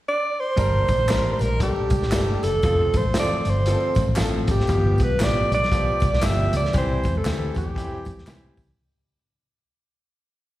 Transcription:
0.08 alto saxophone D5
0.40 alto saxophone C5
0.56 fingered electric bass G1, grand piano G3 D4 A#4, tonewheel organ G3 A#3 D4, kick, closed hi-hat, tambourine, muted conga
0.74 muted conga
0.88 fingered electric bass A#1, kick, closed hi-hat, tambourine, high conga
0.99 high conga
1.09 fingered electric bass A1, grand piano G3 D4 A#4, snare, clap, closed hi-hat, tambourine
1.24 low conga
1.33 alto saxophone C5
1.39 fingered electric bass A#1, alto saxophone A#4, closed hi-hat, tambourine, high conga
1.60 grand piano G3 D4 A4, alto saxophone G4, kick, closed hi-hat, tambourine, muted conga
1.76 muted conga
1.90 fingered electric bass C2, kick, closed hi-hat, tambourine, high conga
2.02 fingered electric bass A#1, snare
2.11 fingered electric bass G1, grand piano G3 D4 A4, snare, clap, closed hi-hat, tambourine, muted conga, high conga
2.29 muted conga
2.43 fingered electric bass F#1, alto saxophone A4, closed hi-hat, tambourine
2.53 low conga
2.63 fingered electric bass F1, grand piano F3 C4 A4, tonewheel organ F3 A3 C4, kick, closed hi-hat, tambourine
2.79 muted conga
2.94 fingered electric bass A1, alto saxophone C5, kick, closed hi-hat, tambourine, high conga
3.03 high conga
3.14 grand piano F3 C4 A4, snare, clap, closed hi-hat, tambourine, muted conga
3.19 alto saxophone D5
3.28 muted fingered electric bass stroke, muted conga, low conga
3.45 fingered electric bass G1, closed hi-hat, high conga
3.49 alto saxophone C5
3.66 grand piano F3 C4 A4, closed hi-hat, tambourine, muted conga
3.81 muted conga
3.95 fingered electric bass A1, kick, closed hi-hat, tambourine, high conga
4.08 fingered electric bass A#1
4.16 fingered electric bass A1, grand piano F3 C4 A4, snare, clap, closed hi-hat, tambourine, muted conga, high conga
4.47 fingered electric bass G#1, alto saxophone G4, kick, closed hi-hat, tambourine
4.58 snare, low conga
4.67 fingered electric bass G1, grand piano F3 B3 G4, tonewheel organ G3 B3, kick, closed hi-hat, tambourine
4.84 muted conga
4.98 fingered electric bass B1, kick, closed hi-hat, tambourine, high conga
5.03 alto saxophone B4
5.10 high conga
5.20 fingered electric bass A1, grand piano F3 B3 G4, snare, clap, closed hi-hat, tambourine, muted conga
5.24 alto saxophone D5
5.35 low conga
5.50 fingered electric bass B1, closed hi-hat, high conga
5.54 alto saxophone D5
5.63 snare
5.71 grand piano F3 B3 G4, kick, closed hi-hat, muted conga
6.00 fingered electric bass C2, kick, closed hi-hat, tambourine, high conga
6.12 fingered electric bass B1, snare
6.22 fingered electric bass G1, grand piano F3 B3 G4, alto saxophone E5, snare, clap, closed hi-hat, tambourine, muted conga, high conga
6.53 fingered electric bass C#2, alto saxophone D5, closed hi-hat, tambourine
6.64 snare, low conga
6.73 fingered electric bass C2, grand piano E3 C4 G4, tonewheel organ E3 C4, kick, closed hi-hat, tambourine
6.78 alto saxophone C5
6.89 muted conga
7.04 fingered electric bass E2, kick, closed hi-hat, tambourine, high conga
7.15 alto saxophone A4, high conga
7.25 fingered electric bass D2, grand piano E3 C4 G4, snare, clap, closed hi-hat, tambourine, muted conga
7.39 low conga
7.55 fingered electric bass E2, alto saxophone G4, kick, closed hi-hat, tambourine, high conga
7.75 grand piano E3 C4 G4, kick, closed hi-hat
7.91 muted conga
8.05 fingered electric bass F2, kick, closed hi-hat, tambourine, high conga
8.17 fingered electric bass E2, snare
8.26 fingered electric bass C2, grand piano E3 C4 G4, snare, clap, closed hi-hat, tambourine, high conga
8.57 fingered electric bass C#2, kick, open hi-hat, tambourine
8.67 low conga

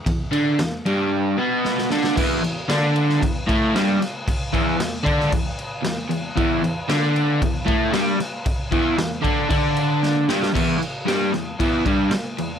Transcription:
0.06 overdriven electric guitar E2, kick, ride
0.31 overdriven electric guitar D3 D4, ride
0.59 overdriven electric guitar E2, snare, ride
0.86 overdriven electric guitar G2 G3, ride
1.37 overdriven electric guitar B2 B3
1.65 snare
1.78 snare
1.91 overdriven electric guitar D3 D4, snare
2.04 snare
2.16 overdriven electric guitar E2 E3, kick, crash
2.42 overdriven electric guitar E2, crash
2.68 overdriven electric guitar D3 D4, snare, crash
2.96 crash
3.09 snare
3.21 overdriven electric guitar E2, kick, crash
3.47 overdriven electric guitar A2 A3, kick, crash
3.75 overdriven electric guitar G2 G3, snare, crash
4.01 muted overdriven electric guitar stroke, snare, crash
4.28 muted overdriven electric guitar stroke, kick, crash
4.53 overdriven electric guitar E2 E3, kick, crash
4.78 overdriven electric guitar E2, snare, crash
5.03 overdriven electric guitar D3 D4, kick, crash
5.20 snare
5.29 overdriven electric guitar E2, kick, crash
5.59 crash
5.83 overdriven electric guitar E2, snare, crash
6.10 overdriven electric guitar E2, crash
6.36 overdriven electric guitar E2 E3, kick, crash
6.62 overdriven electric guitar E2, crash
6.89 overdriven electric guitar D3 D4, snare, crash
7.16 crash
7.42 overdriven electric guitar E2, kick, crash
7.66 overdriven electric guitar A2 A3, kick, crash
7.92 overdriven electric guitar G2 G3, snare, crash
8.20 muted overdriven electric guitar stroke, snare, crash
8.46 muted overdriven electric guitar stroke, kick, crash
8.71 overdriven electric guitar E2 E3, kick, crash
8.98 overdriven electric guitar E2, snare, crash
9.22 overdriven electric guitar D3 D4, kick, crash
9.49 overdriven electric guitar D3 D4, kick, crash
9.77 crash
10.03 snare
10.28 overdriven electric guitar G2 G3, snare
10.43 snare
10.53 overdriven electric guitar E2 E3, kick, crash
10.79 muted overdriven electric guitar stroke, crash
11.05 overdriven electric guitar G2 G3, snare, crash
11.33 overdriven electric guitar E2, snare, crash
11.59 overdriven electric guitar E2 E3, kick, crash
11.86 overdriven electric guitar G2 G3, kick, crash
12.11 muted overdriven electric guitar stroke, snare, crash
12.38 overdriven electric guitar E2, crash

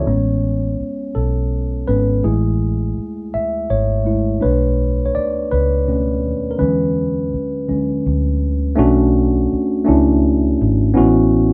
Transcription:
Already playing: tine electric piano C#5
0.06 fingered electric bass A1, tine electric piano G#3 B3 C#4
0.80 muted fingered electric bass stroke
1.15 fingered electric bass B1, tine electric piano A4
1.87 fingered electric bass G#1, tine electric piano G#3 B3 C#4 B4
2.23 fingered electric bass A1, tine electric piano G#3 A3 E4 G#4
2.98 muted fingered electric bass stroke
3.34 tine electric piano E5, muted fingered electric bass stroke
3.70 fingered electric bass G#1, tine electric piano C#5
4.05 tine electric piano G#3 A3 E4
4.41 fingered electric bass B1, tine electric piano A3 D4 B4 C#5
5.06 tine electric piano C#5
5.15 tine electric piano D5, muted fingered electric bass stroke
5.51 fingered electric bass C#2, tine electric piano B4
5.88 tine electric piano B2 A3 C#4
6.25 fingered electric bass D#2
6.51 tine electric piano A#4
6.58 fingered electric bass E2, tine electric piano D3 F#3 G#3 C#4 B4
7.34 muted fingered electric bass stroke
7.68 tine electric piano D3 F#3 G#3 C#4, muted fingered electric bass stroke
8.06 fingered electric bass D2
8.75 fingered electric bass B1, tine electric piano A3 C#4 D4 F#4
9.53 muted fingered electric bass stroke
9.84 fingered electric bass C#2, tine electric piano A3 C#4 D4 E4
10.61 fingered electric bass G#1
10.94 fingered electric bass A1, tine electric piano B3 C#4 E4 F#4

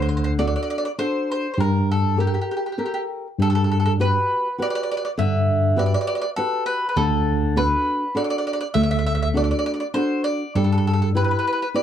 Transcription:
Already playing: tine electric piano D2, nylon-string guitar D3
0.02 mandolin C5
0.09 mandolin C5
0.17 mandolin C5
0.24 mandolin C5
0.38 nylon-string guitar D4 F#4 A4, mandolin D5
0.47 mandolin D5
0.56 mandolin D5
0.63 mandolin D5
0.70 mandolin D5
0.78 mandolin D5
0.85 mandolin D5
0.98 nylon-string guitar D4 F#4 A4, mandolin C5
1.32 mandolin C5
1.54 mandolin C5
1.58 tine electric piano G2, nylon-string guitar G3, mandolin A#4
1.91 mandolin A4
2.17 nylon-string guitar G4 A4 A#4, mandolin G4
2.27 mandolin G4
2.34 mandolin G4
2.41 mandolin G4
2.51 mandolin G4
2.57 mandolin G4
2.66 mandolin G4
2.72 mandolin G4
2.78 nylon-string guitar G4 A4 A#4, mandolin G4
2.86 mandolin G4
2.94 mandolin G4
3.39 tine electric piano G2, nylon-string guitar G3, mandolin A4
3.50 mandolin A4
3.55 mandolin A4
3.64 mandolin A4
3.71 mandolin A4
3.80 mandolin A4
3.86 mandolin A4
4.00 nylon-string guitar F#4 G4 B4, mandolin B4
4.58 nylon-string guitar F#4 G4 B4
4.62 mandolin D5
4.70 mandolin D5
4.75 mandolin D5
4.83 mandolin D5
4.91 mandolin D5
4.97 mandolin D5
5.05 mandolin D5
5.18 tine electric piano G2, nylon-string guitar D3, mandolin E5
5.76 nylon-string guitar F#4 G4 B4, mandolin D5
5.86 mandolin D5
5.94 mandolin D5
6.01 mandolin D5
6.07 mandolin D5
6.15 mandolin D5
6.22 mandolin D5
6.36 nylon-string guitar F#4 G4 B4, mandolin A4
6.66 mandolin B4
6.89 mandolin B4
6.96 tine electric piano D2, nylon-string guitar D3, mandolin A4
7.56 nylon-string guitar D4 F#4 A4, mandolin B4
8.15 nylon-string guitar D4 F#4 A4, mandolin D5
8.24 mandolin D5
8.30 mandolin D5
8.38 mandolin D5
8.47 mandolin D5
8.53 mandolin D5
8.61 mandolin D5
8.74 tine electric piano D2, nylon-string guitar A3, mandolin E5
8.83 mandolin E5
8.91 mandolin E5
8.99 mandolin E5
9.06 mandolin E5
9.15 mandolin E5
9.22 mandolin E5
9.34 nylon-string guitar D4 F#4 A4, mandolin D5
9.44 mandolin D5
9.51 mandolin D5
9.59 mandolin D5
9.66 mandolin D5
9.74 mandolin D5
9.80 mandolin D5
9.94 nylon-string guitar D4 F#4 A4, mandolin C5
10.24 mandolin D5
10.55 tine electric piano G2, nylon-string guitar G3, mandolin A4
10.64 mandolin A4
10.72 mandolin A4
10.78 mandolin A4
10.87 mandolin A4
10.93 mandolin A4
11.02 mandolin A4
11.15 nylon-string guitar E4 G4 B4, mandolin B4
11.24 mandolin B4
11.31 mandolin B4
11.39 mandolin B4
11.47 mandolin B4
11.53 mandolin B4
11.62 mandolin B4
11.74 nylon-string guitar E4 G4 B4, mandolin D5

